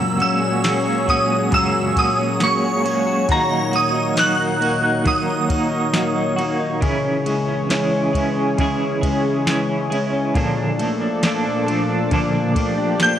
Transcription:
Already playing: F#2 A#2 C#3 F#3 G#3 A#3 C#4 F#4 G#4 A#4 C#5 E6
0.18 A#3 C#4 F#4 E6, ride
0.23 G#3
0.42 F#4
0.63 G#3 A#3 C#4, snare, ride, tambourine
0.67 F#4
0.86 F#4
1.07 A#3 C#4 F#4 D#6, kick, ride
1.11 G#3
1.30 F#4
1.51 F#2 C#3 F#3 G#3 A#3 C#4 F#4 A#4 C#5 E6, kick, ride
1.74 F#4
1.96 A#3 C#4 F#4 D#6, kick, ride
2.00 G#3
2.18 F#4
2.40 G#3 A#3 C#4 C#6, snare, ride, tambourine
2.44 F#4
2.63 F#4
2.84 A#3 C#4 F#4, ride
2.88 G#3
3.07 F#4
3.28 D#3 F#3 A#3 D#4 F#4 A#4 A#5, kick, ride
3.51 D#4
3.71 A#3 D#4 F#4, ride
3.75 A#3 D#6
3.95 D#4
4.16 F#3 A#3 D#4 F#6, snare, ride, tambourine
4.20 F#4
4.39 D#4
4.60 A#3 D#4 F#4, ride
4.64 A#3
4.83 D#4
5.04 D#3 F#3 A#3 D#4 F#4 C#5 D#6, kick, ride
5.27 D#4
5.48 A#3 D#4 F#4, kick, ride
5.53 A#3
5.71 D#4
5.93 F#3 A#3 D#4, snare, ride, tambourine
5.97 F#4
6.16 D#4
6.36 A#3 D#4 F#4, ride
6.41 A#3
6.60 D#4
6.81 C#3 E3 G#3 C#4 E4 G#4, kick, ride
7.05 C#4
7.24 G#3 E4 G#4, ride
7.29 C#4
7.49 C#4
7.69 E3 G#3 C#4 E4, snare, ride, tambourine
7.74 G#4
7.92 C#4
8.13 G#3 E4 G#4, kick, ride
8.17 C#4
8.37 C#4
8.58 C#3 E3 C#4 E4 G#4, kick, ride
8.81 C#4
9.01 G#3 E4 G#4, kick, ride
9.06 C#4
9.25 C#4
9.46 E3 G#3 C#4 E4, snare, ride, tambourine
9.50 G#4
9.69 C#4
9.90 G#3 E4 G#4, ride
9.95 C#4
10.13 C#4
10.34 A#2 D3 F3 A#3 D4 F4 A4 D5, kick, ride
10.57 D4
10.79 A3 A#3 D4 A4, ride
10.83 F3
11.01 D4
11.22 F3 A3 A#3 D4, snare, ride, tambourine
11.27 A4
11.45 D4
11.66 A3 A#3 D4 A4, ride
11.71 F3
11.89 D4
12.11 A#2 D3 F3 A#3 D4 F4 G4 A4, kick, ride
12.33 D4
12.55 A3 A#3 D4 A4, kick, ride
12.59 F3
12.78 D4
12.99 F3 A3 A#3 D4 G6, snare, ride, tambourine
13.03 A4

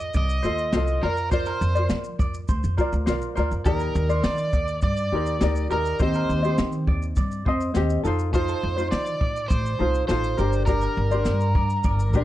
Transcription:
Already playing: F4 A4 D#5
0.00 shaker
0.14 C2 D5 D#5, kick, shaker
0.29 shaker
0.43 D#2 F4 A4 C5 D#5, shaker
0.58 shaker
0.72 C2 F4 A4 C5, snare, shaker
0.77 D#5
0.87 shaker
1.02 F2 F4 A#4 C5 D5, snare
1.17 shaker
1.31 F4 A#4 C5 D5, kick, shaker
1.46 A#4, shaker
1.61 F2, shaker
1.75 F4 A#4 C5 D5, shaker
1.89 F3, snare, shaker
2.04 shaker
2.19 F2 D5, kick, shaker
2.34 shaker
2.48 D2 C5, kick, shaker
2.64 F2, shaker
2.77 F4 A#4 C5 D5, kick, shaker
2.93 D2, shaker
3.06 C2 F4 A#4 C5 D5, snare, shaker
3.21 shaker
3.35 D2 F4 A#4 C5 D5, snare, shaker
3.51 F2, shaker
3.65 D#2 D#4 G4 A#4 D5, kick, shaker
3.80 A#4, shaker
3.95 D#2, shaker
4.09 D#4 A#4 C5 D5, shaker
4.24 D#3 D5, snare, shaker
4.38 shaker
4.53 D#2 D5, kick, shaker
4.68 shaker
4.82 G2 D5, kick, shaker
4.97 shaker
5.12 D#2 D#4 G4 A#4 C5 D5
5.26 shaker
5.40 D2 D#4 G4 A#4 D5, snare, shaker
5.55 shaker
5.70 D#2 D#4 G4 A#4 D5, shaker
5.85 shaker
5.99 D#2 C4 G4 C5 D#5, kick, shaker
6.14 A#4, shaker
6.29 D#2, shaker
6.42 C4 G4 C5 D#5, shaker
6.58 D#3, snare, shaker
6.72 shaker
6.87 D#2 D5, kick
7.02 shaker
7.16 G2 D5, kick, shaker
7.31 shaker
7.45 F2 C4 C5 D#5, kick
7.61 shaker
7.74 D#2 C4 G4 C5 D#5, snare, shaker
7.90 shaker
8.03 F2 D#4 F4 A4 C5, snare, shaker
8.19 shaker
8.33 D#4 F4 A4 C5, kick, shaker
8.48 A4, shaker
8.63 F2
8.77 D#4 F4 C5, shaker
8.91 F3 D5, snare, shaker
9.06 shaker
9.21 A2 D5, kick
9.36 shaker
9.48 A1 C5 D5, kick, shaker
9.66 shaker
9.79 C2 D#4 F4 A4 C5
9.95 shaker
10.08 A1 D#4 F4 A4 C5, snare, shaker
10.24 shaker
10.37 G1 D4 G4 A#4 D5, snare, shaker
10.53 shaker
10.66 D4 G4 A#4 D5, kick, shaker
10.81 A#4, shaker
10.97 G1
11.11 D4 G4 C5 D5, shaker
11.25 G2, snare, shaker
11.40 shaker
11.55 G2 D5, kick
11.70 shaker
11.84 G1 D5, kick, shaker
11.99 shaker
12.13 A#1 D4 G4 A#4 C5 D5, kick, shaker

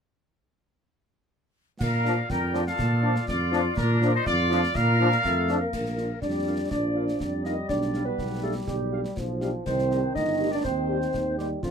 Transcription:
1.79 A#2 F4 A#4 D5 F5, concert bass drum, snare, crash
2.04 F3 D4 F4, snare
2.30 F2 A#4 G5, concert bass drum, snare
2.52 F3 D4 F4, snare
2.67 A4 F5, snare
2.79 A#2, concert bass drum, snare
3.02 F3 D4 F4
3.16 snare
3.28 F2 F4 D5, concert bass drum, snare
3.52 F3 D4 F4, snare
3.77 A#2 D4 A#4, concert bass drum, snare
4.02 F3 D4 F4, snare
4.14 D#4 C5
4.26 F2 F4 D5, concert bass drum, snare
4.50 F3 D4 F4, snare
4.63 snare
4.75 A#2 A#4 F5, concert bass drum, snare
4.99 F3 D4 F4
5.12 snare
5.24 F2 A3 A4, concert bass drum, snare
5.48 F3 D4 F4, snare
5.61 A#3 A#4
5.73 A#1, concert bass drum, snare, crash
5.86 snare
5.97 A#3 D4 F4 F5, snare
6.22 F2 G3 D4 D5, concert bass drum, snare
6.47 A#3 D4 F4 F5
6.70 A#1 F3 D4 D5, concert bass drum, snare
6.95 A#3 D4 F4 F5
7.08 snare
7.20 F2 G3, concert bass drum, snare
7.44 A#3 D4 D#4 F4 D#5 F5, snare
7.69 B1 D4 D5, concert bass drum, snare
7.82 snare
7.94 G3 D4 G4 F5, snare
8.05 B3 B4
8.18 B1, concert bass drum, snare
8.43 G3 A3 D4 G4 A4 F5
8.68 B1 G3 G4, concert bass drum, snare
8.92 G3 D4 G4 F5
9.05 snare
9.17 B1 F3, concert bass drum, snare
9.41 G3 D4 G4 F5, snare
9.65 C2 D#3 C4 C5, concert bass drum, snare, crash
9.79 snare
9.89 G3 D#4 G4 D#5, snare
10.15 G1 D#4 D#5, concert bass drum, snare
10.39 G3 D#4 G4 D#5
10.52 D4 D5
10.64 D#2 C4 C5, concert bass drum, snare
10.89 G3 D#4 G4 C5
11.02 snare
11.14 D#2, concert bass drum, snare
11.38 G3 D#4 G4 C5, snare
11.62 F2 D3 F3 F4, concert bass drum, snare

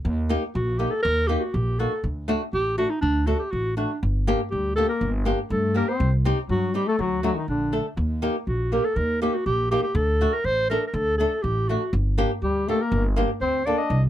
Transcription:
0.05 D#2
0.29 A#3 D#4 G4
0.55 A#1 F#4
0.79 A#3 D#4 G4
0.90 A4
1.03 D#2 A#4
1.27 A#3 D#4 G4
1.38 F#4 G4
1.53 A#1 G4
1.79 A#3 D#4 F#4 A4
2.04 D2
2.28 A3 D4 F#4
2.53 A1 G4
2.78 A3 D4 F#4 A4
2.90 D#4
3.01 D2 D4
3.27 A3 D4 F#4 A4
3.39 G4
3.51 A1 F#4
3.77 A3 D4 F#4
4.03 G1
4.27 A#3 D4 G4
4.51 D2 G3 G4
4.76 A3 A#3 D4 G4 A4
4.88 A#3 A#4
5.01 G1
5.25 A#3 D4 G4
5.50 G2 A3 A4
5.74 A#3 D4 G4 A#4
5.88 C4 C5
6.00 C2
6.25 C4 D#4 G4
6.49 G2 F#3 F#4
6.74 G3 C4 D#4 G4
6.87 A3 A4
6.99 D2 F#3 F#4
7.23 F#3 A3 D4 F#4
7.34 D#3 D#4
7.48 A#1 D3 D4
7.72 A3 D4 A4
7.97 D#2
8.22 A#3 D#4 G4
8.47 A#1 F#4
8.72 A#3 D#4 G4 A#4
8.84 A4
8.96 D#2 A#4
9.22 A#3 D#4 G4
9.34 F#4
9.46 A#1 G4
9.71 A#3 D#4 G4
9.83 G4
9.95 D2 A4
10.21 A3 D4 F#4
10.33 A#4
10.44 A1 C5
10.70 A3 D4 A4 A#4
10.87 A#4
10.94 D2 A4
11.18 A3 D4 A4
11.42 A1 G4
11.68 A3 D4 F#4
11.93 G1
12.18 A#3 D4 G4
12.42 D2 G3 G4
12.67 A3 A#3 D4 G4 A4
12.81 A#3 A#4
12.92 G1
13.16 A#3 D4 G4
13.41 D2 C4 C5
13.66 A#3 D4 A4 D5
13.78 D#5
13.90 C2

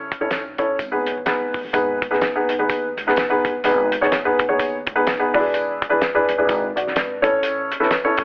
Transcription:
Already playing: A1 C#4 E4 A4 C#5
0.12 kick, closed hi-hat
0.21 A1 C#4 E4 A4 C#5
0.31 B1, snare, closed hi-hat, tambourine
0.58 A1 C#4 E4 A4 C#5, kick, closed hi-hat
0.79 G#1, kick, closed hi-hat, tambourine
0.91 B3 D#4 G#4 B4
1.06 B1, closed hi-hat
1.17 A1
1.26 B3 D#4 G#4 B4, snare, closed hi-hat, tambourine
1.41 G#1
1.54 F#1, kick, open hi-hat
1.65 G1
1.73 G#1 B3 D#4 G#4 B4, kick, closed hi-hat, tambourine
2.02 kick, closed hi-hat
2.11 B1 B3 D#4 G#4 B4, snare
2.21 snare, closed hi-hat, tambourine
2.35 B3 D#4 G#4 B4
2.49 B1, closed hi-hat
2.59 D#2 B3 D#4 G#4 B4
2.69 kick, closed hi-hat, tambourine
2.97 C#2, closed hi-hat
3.07 B3 D#4 G#4 B4, snare
3.16 B1, snare, closed hi-hat, tambourine
3.30 B3 D#4 G#4 B4
3.45 G1, kick, closed hi-hat
3.64 G#1 B3 D#4 G#4 B4, closed hi-hat, tambourine
3.92 closed hi-hat
4.01 B1 B3 D#4 G#4 C#5, snare
4.12 snare, closed hi-hat, tambourine
4.25 B3 D#4 G#4 B4
4.39 B1, kick, closed hi-hat
4.48 D#2 B3 D#4 G#4 C#5
4.59 kick, closed hi-hat, tambourine
4.87 C#2, kick, closed hi-hat
4.95 B3 D#4 G#4 B4
5.07 B1, snare, closed hi-hat, tambourine
5.19 B3 D#4 G#4 B4
5.34 E1 D4 E4 F#4 B4, kick, open hi-hat
5.39 G#4
5.54 closed hi-hat, tambourine
5.82 kick, closed hi-hat
5.89 E1 D4 E4 G#4 B4
6.02 snare, closed hi-hat, tambourine
6.15 D4 E4 G#4 B4
6.29 G#1, closed hi-hat
6.38 G#1 D4 E4 G#4 B4
6.49 kick, closed hi-hat, tambourine
6.76 B1 F#4 D5, closed hi-hat
6.87 snare
6.96 G#1 D4 B4, snare, closed hi-hat, tambourine
7.22 A1 C#4 E4 A4 C#5, kick, closed hi-hat
7.43 closed hi-hat, tambourine
7.71 closed hi-hat
7.80 C#2 C#4 E4 A4 B4, snare
7.91 snare, closed hi-hat, tambourine
8.04 C#4 E4 A4 C#5
8.17 E2, kick, closed hi-hat

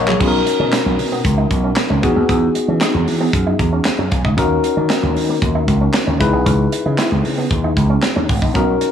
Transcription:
Already playing: A#1
0.07 F#3 G#4 C#5, clap
0.20 B1 B3 C#4 D#4 F#4 G#4, kick, crash
0.28 A#4
0.46 muted clean electric guitar stroke, closed hi-hat
0.60 B2 C#4
0.72 D#4, snare, clap, closed hi-hat
0.86 B1, muted clean electric guitar stroke
0.99 B2, open hi-hat
1.12 B3
1.25 C#2, kick, closed hi-hat
1.38 D#4
1.51 B1, muted clean electric guitar stroke, kick, closed hi-hat
1.64 C#4
1.76 snare, clap, closed hi-hat
1.90 C#2 C#4
2.02 E2 B3 D#4 F#4 G#4, muted clean electric guitar stroke, kick, closed hi-hat
2.16 D#2 B3
2.29 E2 B3, kick, closed hi-hat
2.55 muted clean electric guitar stroke, closed hi-hat
2.68 E3 C#4
2.81 D#4, snare, clap, closed hi-hat
2.94 E2, muted clean electric guitar stroke
3.07 E3, open hi-hat
3.20 B3
3.33 F#2, kick, closed hi-hat
3.47 D#4
3.59 E2, muted clean electric guitar stroke, kick, closed hi-hat
3.73 C#4
3.85 snare, clap, closed hi-hat
3.99 F#2 C#4
4.12 B1, muted clean electric guitar stroke, kick, closed hi-hat
4.25 C#2 D#4, kick
4.37 D#2 C#4 D#4 F#4 A#4, kick, closed hi-hat
4.64 muted clean electric guitar stroke, closed hi-hat
4.77 D#3 C#4
4.90 D#4, snare, clap, closed hi-hat
5.03 D#2, muted clean electric guitar stroke
5.16 D#3, open hi-hat
5.29 A#3
5.42 D#2, kick, closed hi-hat
5.55 D#4
5.68 C#2, muted clean electric guitar stroke, kick, closed hi-hat
5.81 C#4
5.94 snare, clap, closed hi-hat
6.07 D#2 C#4
6.20 C#2 D#4 E4 G#4 B4, muted clean electric guitar stroke, kick, closed hi-hat
6.33 B1 B3
6.46 C#2 C#4, kick, closed hi-hat
6.72 muted clean electric guitar stroke, closed hi-hat
6.85 C#3 D#4
6.98 E4, snare, clap, closed hi-hat
7.12 C#2, muted clean electric guitar stroke
7.25 C#3, open hi-hat
7.38 B3
7.51 D#2, kick, closed hi-hat
7.64 D#4
7.77 C#2, muted clean electric guitar stroke, kick, closed hi-hat
7.90 C#4
8.02 snare, clap, closed hi-hat
8.16 D#2 C#4
8.29 G#1, muted clean electric guitar stroke, kick, open hi-hat
8.42 A#1 D#4, kick
8.54 B1 B3 C#4 D#4 F#4 A#4, kick, closed hi-hat
8.81 muted clean electric guitar stroke, closed hi-hat

